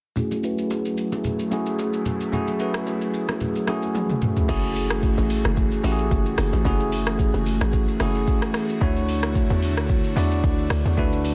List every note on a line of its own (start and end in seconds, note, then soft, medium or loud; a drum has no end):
0.16 4.45 F#3 medium
0.16 0.38 A3 medium
0.16 4.45 A3 medium
0.16 0.39 C#4 medium
0.16 4.45 E4 medium
0.16 0.39 E4 medium
0.16 0.39 F#4 medium
0.16 4.45 G#4 medium
0.16 0.39 G#4 medium
0.16 low conga medium
0.16 shaker medium
0.31 low bongo medium
0.31 shaker medium
0.43 1.30 A3 medium
0.43 1.30 C#4 medium
0.43 1.31 E4 medium
0.43 1.31 F#4 medium
0.43 1.31 B4 medium
0.43 shaker medium
0.58 shaker medium
0.70 high bongo medium
0.70 shaker medium
0.85 shaker soft
0.98 shaker medium
1.12 low bongo medium
1.12 shaker soft
1.24 low conga medium
1.24 shaker medium
1.39 shaker medium
1.51 2.17 A3 medium
1.51 2.17 C#4 medium
1.51 2.18 E4 medium
1.51 2.18 F#4 medium
1.51 2.18 G#4 medium
1.51 low bongo medium
1.51 shaker medium
1.66 shaker medium
1.79 high bongo medium
1.79 shaker medium
1.93 shaker medium
2.06 low conga medium
2.06 shaker medium
2.21 shaker medium
2.32 2.55 A3 medium
2.32 2.55 C#4 medium
2.32 2.55 E4 medium
2.32 2.55 F#4 medium
2.32 2.56 G#4 medium
2.32 low conga medium
2.32 shaker medium
2.47 low bongo medium
2.47 shaker medium
2.59 3.46 A3 medium
2.59 3.47 C#4 medium
2.59 3.47 E4 medium
2.59 3.47 F#4 medium
2.59 3.47 B4 medium
2.59 shaker medium
2.74 cross-stick loud
2.74 shaker medium
2.87 high bongo medium
2.87 shaker medium
3.02 shaker medium
3.14 shaker medium
3.28 cross-stick medium
3.28 low bongo medium
3.28 shaker soft
3.40 low conga medium
3.40 shaker medium
3.56 shaker medium
3.67 4.33 A3 medium
3.67 4.34 C#4 medium
3.67 4.34 E4 medium
3.67 4.34 F#4 medium
3.67 4.34 G#4 medium
3.67 cross-stick medium
3.67 low bongo medium
3.67 shaker medium
3.82 shaker medium
3.95 high tom medium
3.95 high bongo medium
3.95 shaker medium
4.10 mid tom medium
4.10 shaker soft
4.22 mid tom medium
4.22 low conga medium
4.22 shaker medium
4.37 floor tom medium
4.37 shaker medium
4.48 5.14 F#1 loud
4.48 8.77 E3 medium
4.48 5.36 A3 medium
4.48 11.35 A3 medium
4.48 5.36 C#4 medium
4.48 5.36 E4 medium
4.48 11.35 F#4 medium
4.48 5.36 F#4 medium
4.48 8.77 G#4 medium
4.48 5.37 G#4 medium
4.48 kick loud
4.48 crash loud
4.48 shaker medium
4.64 shaker medium
4.76 open hi-hat medium
4.76 shaker loud
4.90 cross-stick loud
4.90 shaker medium
5.03 kick medium
5.03 shaker medium
5.18 5.44 A1 medium
5.18 shaker medium
5.30 open hi-hat medium
5.30 shaker medium
5.45 5.71 F#1 medium
5.45 cross-stick medium
5.45 shaker medium
5.57 kick loud
5.57 shaker medium
5.72 shaker medium
5.83 6.10 A1 loud
5.83 6.50 A3 medium
5.83 6.50 C#4 medium
5.83 6.50 E4 medium
5.83 6.50 F#4 medium
5.83 5.92 G4 medium
5.83 open hi-hat medium
5.83 shaker medium
5.92 6.54 G#4 loud
5.99 shaker medium
6.11 6.37 F#1 medium
6.11 kick loud
6.11 shaker medium
6.26 shaker medium
6.38 6.52 F#1 loud
6.38 cross-stick loud
6.38 open hi-hat medium
6.38 shaker loud
6.53 6.65 A1 medium
6.53 shaker medium
6.65 7.31 F#1 loud
6.65 7.52 A3 medium
6.65 7.52 C#4 medium
6.65 7.52 E4 medium
6.65 7.53 F#4 medium
6.65 7.53 G#4 medium
6.65 kick loud
6.65 shaker medium
6.80 shaker medium
6.92 open hi-hat medium
6.92 shaker loud
7.07 cross-stick loud
7.07 shaker medium
7.19 kick medium
7.19 shaker medium
7.34 7.60 F#1 loud
7.34 shaker medium
7.46 open hi-hat medium
7.46 shaker medium
7.61 7.87 A1 medium
7.61 cross-stick medium
7.61 shaker medium
7.73 kick loud
7.73 shaker medium
7.88 shaker medium
8.00 8.26 F#1 medium
8.00 8.66 A3 medium
8.00 8.66 C#4 medium
8.00 8.66 E4 medium
8.00 8.67 F#4 medium
8.00 8.67 G#4 medium
8.00 cross-stick medium
8.00 open hi-hat medium
8.00 shaker medium
8.15 shaker medium
8.28 kick loud
8.28 shaker medium
8.42 cross-stick loud
8.42 shaker medium
8.54 cross-stick loud
8.54 open hi-hat medium
8.54 shaker medium
8.69 shaker medium
8.81 9.47 D2 loud
8.81 11.35 D3 medium
8.81 9.68 A3 medium
8.81 11.35 D4 medium
8.81 9.68 D4 medium
8.81 9.69 E4 medium
8.81 9.69 F#4 medium
8.81 9.69 C#5 loud
8.81 kick loud
8.81 shaker medium
8.96 shaker medium
9.09 open hi-hat medium
9.09 shaker loud
9.23 cross-stick loud
9.23 shaker medium
9.35 kick medium
9.35 shaker medium
9.50 9.79 E2 medium
9.50 shaker medium
9.62 open hi-hat medium
9.62 shaker medium
9.77 10.03 D2 medium
9.77 cross-stick medium
9.77 shaker medium
9.89 kick loud
9.89 shaker medium
10.04 shaker medium
10.16 10.42 E2 loud
10.16 10.82 A3 medium
10.16 10.82 D4 medium
10.16 10.83 E4 medium
10.16 10.83 F#4 medium
10.16 10.83 D5 loud
10.16 open hi-hat medium
10.16 shaker medium
10.31 shaker medium
10.44 10.70 D2 medium
10.44 kick loud
10.44 shaker medium
10.58 shaker medium
10.70 10.85 D2 loud
10.70 cross-stick loud
10.70 open hi-hat medium
10.70 shaker medium
10.85 10.99 E2 medium
10.85 shaker medium
10.97 11.35 D2 loud
10.97 11.35 A3 medium
10.97 11.35 D4 medium
10.97 11.35 E4 medium
10.97 11.35 F#4 medium
10.97 11.35 B4 medium
10.97 kick loud
10.97 shaker medium
11.13 shaker medium
11.25 open hi-hat medium
11.25 shaker loud